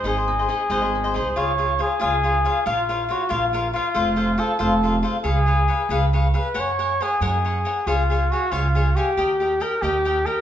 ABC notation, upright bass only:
X:1
M:6/8
L:1/8
Q:3/8=92
K:Ab
V:1 name="Upright bass" clef=bass
A,,,3 A,,,2 C,, | [K:Db] D,,3 D,,3 | B,,,3 B,,,3 | F,,,3 F,,,3 |
D,,3 D,,3 | G,,3 G,,3 | D,,3 D,,3 | E,,3 E,,3 |]